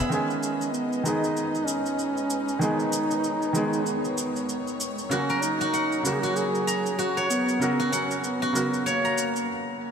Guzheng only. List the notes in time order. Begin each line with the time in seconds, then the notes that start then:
Already playing: G#4 E5
0.00 B5
5.11 F#4
5.30 A#4
5.61 F#4
5.74 F#5
6.23 F#4
6.67 A#5
6.99 F#4
7.17 C#5
7.80 F#4
7.92 F#5
8.42 F#4
8.86 C#5
9.05 A#5